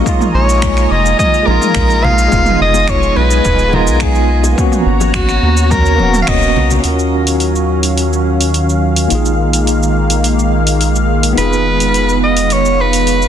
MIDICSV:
0, 0, Header, 1, 6, 480
1, 0, Start_track
1, 0, Key_signature, -6, "minor"
1, 0, Tempo, 566038
1, 46, Time_signature, 4, 2, 24, 8
1, 11261, End_track
2, 0, Start_track
2, 0, Title_t, "Soprano saxophone"
2, 0, Program_c, 0, 64
2, 295, Note_on_c, 0, 73, 103
2, 777, Note_on_c, 0, 75, 94
2, 790, Note_off_c, 0, 73, 0
2, 1008, Note_off_c, 0, 75, 0
2, 1013, Note_on_c, 0, 75, 108
2, 1243, Note_on_c, 0, 70, 102
2, 1255, Note_off_c, 0, 75, 0
2, 1730, Note_on_c, 0, 77, 121
2, 1743, Note_off_c, 0, 70, 0
2, 2208, Note_off_c, 0, 77, 0
2, 2222, Note_on_c, 0, 75, 100
2, 2456, Note_on_c, 0, 73, 99
2, 2469, Note_off_c, 0, 75, 0
2, 2687, Note_on_c, 0, 71, 100
2, 2700, Note_off_c, 0, 73, 0
2, 3179, Note_on_c, 0, 70, 84
2, 3191, Note_off_c, 0, 71, 0
2, 3416, Note_on_c, 0, 68, 85
2, 3429, Note_off_c, 0, 70, 0
2, 3774, Note_off_c, 0, 68, 0
2, 4371, Note_on_c, 0, 66, 85
2, 4842, Note_on_c, 0, 70, 101
2, 4855, Note_off_c, 0, 66, 0
2, 5266, Note_off_c, 0, 70, 0
2, 5277, Note_on_c, 0, 77, 82
2, 5332, Note_on_c, 0, 75, 102
2, 5345, Note_off_c, 0, 77, 0
2, 5692, Note_off_c, 0, 75, 0
2, 9651, Note_on_c, 0, 71, 101
2, 10334, Note_off_c, 0, 71, 0
2, 10377, Note_on_c, 0, 75, 91
2, 10624, Note_on_c, 0, 73, 104
2, 10637, Note_off_c, 0, 75, 0
2, 10864, Note_on_c, 0, 71, 94
2, 10876, Note_off_c, 0, 73, 0
2, 11261, Note_off_c, 0, 71, 0
2, 11261, End_track
3, 0, Start_track
3, 0, Title_t, "Analog synth pad"
3, 0, Program_c, 1, 89
3, 0, Note_on_c, 1, 75, 67
3, 39, Note_on_c, 1, 80, 73
3, 42, Note_on_c, 1, 65, 76
3, 46, Note_on_c, 1, 82, 81
3, 1932, Note_off_c, 1, 75, 0
3, 1943, Note_off_c, 1, 80, 0
3, 1946, Note_off_c, 1, 82, 0
3, 1967, Note_on_c, 1, 75, 72
3, 1969, Note_on_c, 1, 80, 71
3, 3850, Note_off_c, 1, 65, 0
3, 3867, Note_off_c, 1, 75, 0
3, 3868, Note_off_c, 1, 80, 0
3, 3876, Note_on_c, 1, 66, 77
3, 3876, Note_on_c, 1, 73, 74
3, 3877, Note_on_c, 1, 82, 70
3, 5781, Note_off_c, 1, 66, 0
3, 5782, Note_off_c, 1, 73, 0
3, 5782, Note_off_c, 1, 82, 0
3, 5789, Note_on_c, 1, 61, 65
3, 5791, Note_on_c, 1, 51, 75
3, 5792, Note_on_c, 1, 54, 67
3, 5794, Note_on_c, 1, 77, 81
3, 7698, Note_off_c, 1, 61, 0
3, 7699, Note_off_c, 1, 54, 0
3, 7721, Note_on_c, 1, 56, 66
3, 7721, Note_on_c, 1, 58, 69
3, 9624, Note_off_c, 1, 58, 0
3, 9649, Note_on_c, 1, 59, 69
3, 11261, Note_off_c, 1, 51, 0
3, 11261, Note_off_c, 1, 56, 0
3, 11261, Note_off_c, 1, 59, 0
3, 11261, Note_off_c, 1, 77, 0
3, 11261, End_track
4, 0, Start_track
4, 0, Title_t, "Tine electric piano"
4, 0, Program_c, 2, 4
4, 0, Control_c, 2, 64, 127
4, 16, Note_on_c, 2, 56, 89
4, 37, Note_on_c, 2, 58, 75
4, 54, Note_on_c, 2, 63, 81
4, 55, Control_c, 2, 64, 0
4, 74, Note_on_c, 2, 65, 98
4, 210, Control_c, 2, 64, 127
4, 1198, Note_off_c, 2, 56, 0
4, 1208, Note_on_c, 2, 56, 92
4, 1213, Note_off_c, 2, 58, 0
4, 1222, Note_off_c, 2, 63, 0
4, 1232, Note_off_c, 2, 65, 0
4, 1232, Note_on_c, 2, 58, 78
4, 1254, Note_on_c, 2, 63, 85
4, 1276, Note_on_c, 2, 65, 101
4, 1919, Note_off_c, 2, 56, 0
4, 1931, Note_off_c, 2, 58, 0
4, 1936, Note_on_c, 2, 56, 89
4, 1942, Note_off_c, 2, 63, 0
4, 1953, Note_off_c, 2, 65, 0
4, 1955, Note_on_c, 2, 59, 80
4, 1976, Note_on_c, 2, 63, 79
4, 1977, Control_c, 2, 64, 0
4, 2000, Note_on_c, 2, 65, 96
4, 2147, Control_c, 2, 64, 127
4, 3115, Note_off_c, 2, 56, 0
4, 3125, Note_on_c, 2, 56, 89
4, 3133, Note_off_c, 2, 59, 0
4, 3143, Note_off_c, 2, 63, 0
4, 3143, Note_on_c, 2, 59, 83
4, 3155, Note_off_c, 2, 65, 0
4, 3165, Note_on_c, 2, 63, 84
4, 3183, Note_on_c, 2, 65, 96
4, 3837, Note_off_c, 2, 56, 0
4, 3839, Note_on_c, 2, 58, 90
4, 3846, Note_off_c, 2, 59, 0
4, 3857, Note_off_c, 2, 63, 0
4, 3860, Note_on_c, 2, 59, 80
4, 3867, Note_off_c, 2, 65, 0
4, 3883, Note_on_c, 2, 61, 82
4, 3897, Control_c, 2, 64, 0
4, 3902, Note_on_c, 2, 66, 103
4, 4069, Control_c, 2, 64, 127
4, 5034, Note_off_c, 2, 58, 0
4, 5045, Note_off_c, 2, 59, 0
4, 5048, Note_on_c, 2, 58, 91
4, 5056, Note_off_c, 2, 61, 0
4, 5066, Note_off_c, 2, 66, 0
4, 5067, Note_on_c, 2, 59, 83
4, 5091, Note_on_c, 2, 61, 81
4, 5111, Note_on_c, 2, 66, 101
4, 5756, Note_off_c, 2, 61, 0
4, 5759, Note_off_c, 2, 58, 0
4, 5767, Note_on_c, 2, 61, 67
4, 5768, Note_off_c, 2, 59, 0
4, 5785, Note_on_c, 2, 65, 62
4, 5790, Note_off_c, 2, 66, 0
4, 5810, Note_on_c, 2, 66, 60
4, 5816, Control_c, 2, 64, 0
4, 5830, Note_on_c, 2, 70, 69
4, 5960, Control_c, 2, 64, 127
4, 7678, Note_off_c, 2, 61, 0
4, 7687, Note_off_c, 2, 65, 0
4, 7698, Note_on_c, 2, 58, 67
4, 7700, Note_off_c, 2, 66, 0
4, 7710, Note_off_c, 2, 70, 0
4, 7715, Note_on_c, 2, 63, 62
4, 7734, Note_on_c, 2, 65, 61
4, 7738, Control_c, 2, 64, 0
4, 7758, Note_on_c, 2, 68, 73
4, 7879, Control_c, 2, 64, 127
4, 9604, Note_off_c, 2, 58, 0
4, 9607, Note_on_c, 2, 59, 74
4, 9612, Note_off_c, 2, 63, 0
4, 9622, Note_off_c, 2, 65, 0
4, 9629, Note_on_c, 2, 63, 66
4, 9634, Note_off_c, 2, 68, 0
4, 9652, Note_on_c, 2, 65, 67
4, 9655, Control_c, 2, 64, 0
4, 9671, Note_on_c, 2, 68, 81
4, 9780, Control_c, 2, 64, 127
4, 11261, Note_off_c, 2, 59, 0
4, 11261, Note_off_c, 2, 63, 0
4, 11261, Note_off_c, 2, 65, 0
4, 11261, Note_off_c, 2, 68, 0
4, 11261, End_track
5, 0, Start_track
5, 0, Title_t, "Analog synth bass"
5, 0, Program_c, 3, 38
5, 291, Note_on_c, 3, 34, 84
5, 740, Note_off_c, 3, 34, 0
5, 770, Note_on_c, 3, 29, 100
5, 973, Note_off_c, 3, 29, 0
5, 1250, Note_on_c, 3, 34, 84
5, 1352, Note_off_c, 3, 34, 0
5, 1490, Note_on_c, 3, 34, 91
5, 1940, Note_off_c, 3, 34, 0
5, 1968, Note_on_c, 3, 29, 97
5, 2172, Note_off_c, 3, 29, 0
5, 2207, Note_on_c, 3, 29, 84
5, 2658, Note_off_c, 3, 29, 0
5, 2684, Note_on_c, 3, 35, 107
5, 2890, Note_off_c, 3, 35, 0
5, 2926, Note_on_c, 3, 27, 76
5, 3286, Note_on_c, 3, 35, 84
5, 3299, Note_off_c, 3, 27, 0
5, 3856, Note_off_c, 3, 35, 0
5, 4121, Note_on_c, 3, 32, 84
5, 4575, Note_off_c, 3, 32, 0
5, 4601, Note_on_c, 3, 39, 100
5, 5077, Note_on_c, 3, 27, 74
5, 5090, Note_off_c, 3, 39, 0
5, 5286, Note_off_c, 3, 27, 0
5, 5322, Note_on_c, 3, 27, 86
5, 5556, Note_on_c, 3, 35, 78
5, 5569, Note_off_c, 3, 27, 0
5, 5766, Note_off_c, 3, 35, 0
5, 5801, Note_on_c, 3, 39, 77
5, 7700, Note_off_c, 3, 39, 0
5, 7728, Note_on_c, 3, 34, 83
5, 9624, Note_off_c, 3, 34, 0
5, 9646, Note_on_c, 3, 29, 86
5, 11261, Note_off_c, 3, 29, 0
5, 11261, End_track
6, 0, Start_track
6, 0, Title_t, "Drums"
6, 51, Note_on_c, 9, 36, 96
6, 55, Note_on_c, 9, 82, 52
6, 136, Note_off_c, 9, 36, 0
6, 139, Note_off_c, 9, 82, 0
6, 175, Note_on_c, 9, 45, 79
6, 181, Note_on_c, 9, 82, 28
6, 260, Note_off_c, 9, 45, 0
6, 266, Note_off_c, 9, 82, 0
6, 420, Note_on_c, 9, 82, 62
6, 504, Note_off_c, 9, 82, 0
6, 527, Note_on_c, 9, 26, 85
6, 531, Note_on_c, 9, 36, 97
6, 533, Note_on_c, 9, 82, 50
6, 612, Note_off_c, 9, 26, 0
6, 616, Note_off_c, 9, 36, 0
6, 618, Note_off_c, 9, 82, 0
6, 652, Note_on_c, 9, 26, 29
6, 658, Note_on_c, 9, 82, 33
6, 737, Note_off_c, 9, 26, 0
6, 743, Note_off_c, 9, 82, 0
6, 898, Note_on_c, 9, 82, 62
6, 983, Note_off_c, 9, 82, 0
6, 1008, Note_on_c, 9, 45, 78
6, 1010, Note_on_c, 9, 36, 86
6, 1014, Note_on_c, 9, 82, 49
6, 1093, Note_off_c, 9, 45, 0
6, 1095, Note_off_c, 9, 36, 0
6, 1099, Note_off_c, 9, 82, 0
6, 1134, Note_on_c, 9, 82, 29
6, 1219, Note_off_c, 9, 82, 0
6, 1252, Note_on_c, 9, 63, 62
6, 1337, Note_off_c, 9, 63, 0
6, 1368, Note_on_c, 9, 45, 78
6, 1374, Note_on_c, 9, 82, 63
6, 1453, Note_off_c, 9, 45, 0
6, 1459, Note_off_c, 9, 82, 0
6, 1480, Note_on_c, 9, 26, 92
6, 1486, Note_on_c, 9, 82, 50
6, 1490, Note_on_c, 9, 36, 94
6, 1565, Note_off_c, 9, 26, 0
6, 1571, Note_off_c, 9, 82, 0
6, 1574, Note_off_c, 9, 36, 0
6, 1612, Note_on_c, 9, 82, 30
6, 1697, Note_off_c, 9, 82, 0
6, 1733, Note_on_c, 9, 64, 86
6, 1818, Note_off_c, 9, 64, 0
6, 1852, Note_on_c, 9, 82, 64
6, 1937, Note_off_c, 9, 82, 0
6, 1969, Note_on_c, 9, 36, 100
6, 1969, Note_on_c, 9, 82, 49
6, 2053, Note_off_c, 9, 36, 0
6, 2053, Note_off_c, 9, 82, 0
6, 2080, Note_on_c, 9, 45, 80
6, 2085, Note_on_c, 9, 82, 31
6, 2164, Note_off_c, 9, 45, 0
6, 2170, Note_off_c, 9, 82, 0
6, 2324, Note_on_c, 9, 60, 57
6, 2328, Note_on_c, 9, 82, 65
6, 2408, Note_off_c, 9, 60, 0
6, 2413, Note_off_c, 9, 82, 0
6, 2438, Note_on_c, 9, 26, 83
6, 2444, Note_on_c, 9, 82, 46
6, 2446, Note_on_c, 9, 36, 92
6, 2523, Note_off_c, 9, 26, 0
6, 2529, Note_off_c, 9, 82, 0
6, 2531, Note_off_c, 9, 36, 0
6, 2568, Note_on_c, 9, 82, 30
6, 2653, Note_off_c, 9, 82, 0
6, 2684, Note_on_c, 9, 60, 35
6, 2769, Note_off_c, 9, 60, 0
6, 2805, Note_on_c, 9, 82, 64
6, 2890, Note_off_c, 9, 82, 0
6, 2923, Note_on_c, 9, 82, 51
6, 2926, Note_on_c, 9, 36, 91
6, 3008, Note_off_c, 9, 82, 0
6, 3010, Note_off_c, 9, 36, 0
6, 3042, Note_on_c, 9, 82, 30
6, 3127, Note_off_c, 9, 82, 0
6, 3160, Note_on_c, 9, 63, 57
6, 3164, Note_on_c, 9, 64, 85
6, 3244, Note_off_c, 9, 63, 0
6, 3249, Note_off_c, 9, 64, 0
6, 3284, Note_on_c, 9, 82, 60
6, 3368, Note_off_c, 9, 82, 0
6, 3392, Note_on_c, 9, 26, 92
6, 3398, Note_on_c, 9, 82, 49
6, 3404, Note_on_c, 9, 36, 91
6, 3477, Note_off_c, 9, 26, 0
6, 3483, Note_off_c, 9, 82, 0
6, 3489, Note_off_c, 9, 36, 0
6, 3520, Note_on_c, 9, 82, 29
6, 3605, Note_off_c, 9, 82, 0
6, 3762, Note_on_c, 9, 60, 59
6, 3766, Note_on_c, 9, 82, 65
6, 3846, Note_off_c, 9, 60, 0
6, 3851, Note_off_c, 9, 82, 0
6, 3883, Note_on_c, 9, 36, 102
6, 3886, Note_on_c, 9, 82, 50
6, 3967, Note_off_c, 9, 36, 0
6, 3971, Note_off_c, 9, 82, 0
6, 4001, Note_on_c, 9, 45, 75
6, 4007, Note_on_c, 9, 82, 30
6, 4086, Note_off_c, 9, 45, 0
6, 4092, Note_off_c, 9, 82, 0
6, 4241, Note_on_c, 9, 63, 74
6, 4248, Note_on_c, 9, 60, 67
6, 4248, Note_on_c, 9, 82, 63
6, 4326, Note_off_c, 9, 63, 0
6, 4333, Note_off_c, 9, 60, 0
6, 4333, Note_off_c, 9, 82, 0
6, 4357, Note_on_c, 9, 26, 92
6, 4363, Note_on_c, 9, 82, 50
6, 4364, Note_on_c, 9, 36, 95
6, 4442, Note_off_c, 9, 26, 0
6, 4448, Note_off_c, 9, 82, 0
6, 4449, Note_off_c, 9, 36, 0
6, 4483, Note_on_c, 9, 26, 28
6, 4489, Note_on_c, 9, 82, 29
6, 4568, Note_off_c, 9, 26, 0
6, 4574, Note_off_c, 9, 82, 0
6, 4724, Note_on_c, 9, 82, 65
6, 4732, Note_on_c, 9, 60, 34
6, 4809, Note_off_c, 9, 82, 0
6, 4816, Note_off_c, 9, 60, 0
6, 4838, Note_on_c, 9, 45, 72
6, 4843, Note_on_c, 9, 36, 97
6, 4844, Note_on_c, 9, 82, 48
6, 4923, Note_off_c, 9, 45, 0
6, 4928, Note_off_c, 9, 36, 0
6, 4929, Note_off_c, 9, 82, 0
6, 4966, Note_on_c, 9, 82, 33
6, 5051, Note_off_c, 9, 82, 0
6, 5083, Note_on_c, 9, 63, 65
6, 5168, Note_off_c, 9, 63, 0
6, 5202, Note_on_c, 9, 45, 80
6, 5208, Note_on_c, 9, 82, 63
6, 5287, Note_off_c, 9, 45, 0
6, 5293, Note_off_c, 9, 82, 0
6, 5318, Note_on_c, 9, 26, 91
6, 5323, Note_on_c, 9, 36, 93
6, 5324, Note_on_c, 9, 82, 52
6, 5403, Note_off_c, 9, 26, 0
6, 5408, Note_off_c, 9, 36, 0
6, 5408, Note_off_c, 9, 82, 0
6, 5447, Note_on_c, 9, 82, 30
6, 5532, Note_off_c, 9, 82, 0
6, 5565, Note_on_c, 9, 64, 83
6, 5650, Note_off_c, 9, 64, 0
6, 5688, Note_on_c, 9, 82, 63
6, 5692, Note_on_c, 9, 64, 81
6, 5773, Note_off_c, 9, 82, 0
6, 5777, Note_off_c, 9, 64, 0
6, 5798, Note_on_c, 9, 46, 38
6, 5804, Note_on_c, 9, 82, 45
6, 5882, Note_off_c, 9, 46, 0
6, 5888, Note_off_c, 9, 82, 0
6, 5928, Note_on_c, 9, 82, 27
6, 6013, Note_off_c, 9, 82, 0
6, 6164, Note_on_c, 9, 46, 50
6, 6169, Note_on_c, 9, 82, 56
6, 6248, Note_off_c, 9, 46, 0
6, 6254, Note_off_c, 9, 82, 0
6, 6277, Note_on_c, 9, 46, 34
6, 6282, Note_on_c, 9, 82, 44
6, 6361, Note_off_c, 9, 46, 0
6, 6367, Note_off_c, 9, 82, 0
6, 6406, Note_on_c, 9, 82, 28
6, 6491, Note_off_c, 9, 82, 0
6, 6641, Note_on_c, 9, 46, 51
6, 6646, Note_on_c, 9, 82, 55
6, 6725, Note_off_c, 9, 46, 0
6, 6731, Note_off_c, 9, 82, 0
6, 6763, Note_on_c, 9, 46, 41
6, 6769, Note_on_c, 9, 82, 45
6, 6848, Note_off_c, 9, 46, 0
6, 6854, Note_off_c, 9, 82, 0
6, 6894, Note_on_c, 9, 82, 28
6, 6979, Note_off_c, 9, 82, 0
6, 7128, Note_on_c, 9, 46, 48
6, 7134, Note_on_c, 9, 82, 54
6, 7213, Note_off_c, 9, 46, 0
6, 7219, Note_off_c, 9, 82, 0
6, 7244, Note_on_c, 9, 46, 37
6, 7250, Note_on_c, 9, 82, 42
6, 7329, Note_off_c, 9, 46, 0
6, 7335, Note_off_c, 9, 82, 0
6, 7372, Note_on_c, 9, 82, 29
6, 7456, Note_off_c, 9, 82, 0
6, 7602, Note_on_c, 9, 46, 52
6, 7608, Note_on_c, 9, 82, 63
6, 7687, Note_off_c, 9, 46, 0
6, 7693, Note_off_c, 9, 82, 0
6, 7720, Note_on_c, 9, 46, 37
6, 7726, Note_on_c, 9, 82, 47
6, 7805, Note_off_c, 9, 46, 0
6, 7811, Note_off_c, 9, 82, 0
6, 7848, Note_on_c, 9, 82, 29
6, 7933, Note_off_c, 9, 82, 0
6, 8085, Note_on_c, 9, 46, 48
6, 8091, Note_on_c, 9, 82, 58
6, 8170, Note_off_c, 9, 46, 0
6, 8175, Note_off_c, 9, 82, 0
6, 8203, Note_on_c, 9, 46, 34
6, 8208, Note_on_c, 9, 82, 47
6, 8287, Note_off_c, 9, 46, 0
6, 8293, Note_off_c, 9, 82, 0
6, 8334, Note_on_c, 9, 82, 30
6, 8419, Note_off_c, 9, 82, 0
6, 8565, Note_on_c, 9, 46, 51
6, 8571, Note_on_c, 9, 82, 61
6, 8649, Note_off_c, 9, 46, 0
6, 8655, Note_off_c, 9, 82, 0
6, 8685, Note_on_c, 9, 46, 39
6, 8691, Note_on_c, 9, 82, 52
6, 8770, Note_off_c, 9, 46, 0
6, 8775, Note_off_c, 9, 82, 0
6, 8813, Note_on_c, 9, 82, 30
6, 8897, Note_off_c, 9, 82, 0
6, 9046, Note_on_c, 9, 46, 47
6, 9052, Note_on_c, 9, 82, 58
6, 9131, Note_off_c, 9, 46, 0
6, 9137, Note_off_c, 9, 82, 0
6, 9164, Note_on_c, 9, 46, 37
6, 9170, Note_on_c, 9, 82, 47
6, 9249, Note_off_c, 9, 46, 0
6, 9255, Note_off_c, 9, 82, 0
6, 9291, Note_on_c, 9, 82, 30
6, 9376, Note_off_c, 9, 82, 0
6, 9525, Note_on_c, 9, 46, 52
6, 9531, Note_on_c, 9, 82, 63
6, 9610, Note_off_c, 9, 46, 0
6, 9616, Note_off_c, 9, 82, 0
6, 9646, Note_on_c, 9, 46, 35
6, 9652, Note_on_c, 9, 82, 47
6, 9731, Note_off_c, 9, 46, 0
6, 9737, Note_off_c, 9, 82, 0
6, 9777, Note_on_c, 9, 82, 29
6, 9862, Note_off_c, 9, 82, 0
6, 10009, Note_on_c, 9, 46, 48
6, 10015, Note_on_c, 9, 82, 63
6, 10094, Note_off_c, 9, 46, 0
6, 10100, Note_off_c, 9, 82, 0
6, 10128, Note_on_c, 9, 46, 34
6, 10134, Note_on_c, 9, 82, 48
6, 10212, Note_off_c, 9, 46, 0
6, 10218, Note_off_c, 9, 82, 0
6, 10253, Note_on_c, 9, 82, 29
6, 10338, Note_off_c, 9, 82, 0
6, 10486, Note_on_c, 9, 46, 49
6, 10492, Note_on_c, 9, 82, 61
6, 10571, Note_off_c, 9, 46, 0
6, 10577, Note_off_c, 9, 82, 0
6, 10602, Note_on_c, 9, 46, 38
6, 10608, Note_on_c, 9, 82, 49
6, 10687, Note_off_c, 9, 46, 0
6, 10693, Note_off_c, 9, 82, 0
6, 10730, Note_on_c, 9, 82, 32
6, 10815, Note_off_c, 9, 82, 0
6, 10966, Note_on_c, 9, 46, 46
6, 10972, Note_on_c, 9, 82, 65
6, 11051, Note_off_c, 9, 46, 0
6, 11057, Note_off_c, 9, 82, 0
6, 11083, Note_on_c, 9, 46, 35
6, 11089, Note_on_c, 9, 82, 49
6, 11168, Note_off_c, 9, 46, 0
6, 11174, Note_off_c, 9, 82, 0
6, 11211, Note_on_c, 9, 82, 30
6, 11261, Note_off_c, 9, 82, 0
6, 11261, End_track
0, 0, End_of_file